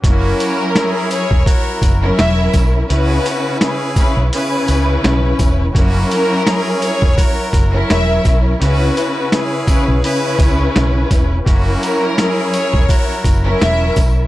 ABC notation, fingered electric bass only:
X:1
M:4/4
L:1/16
Q:"Swing 16ths" 1/4=84
K:F#mix
V:1 name="Fingered electric bass" clef=bass
F,,,2 z4 z E,,, z2 F,,,2 E,,,2 B,,,2 | C,,2 z4 z B,,, z2 C,,2 B,,,2 E,,,2 | F,,,2 z4 z E,,, z2 F,,,2 E,,,2 B,,,2 | C,,2 z4 z B,,, z2 C,,2 B,,,2 E,,,2 |
F,,,2 z4 z E,,, z2 F,,,2 E,,,2 B,,,2 |]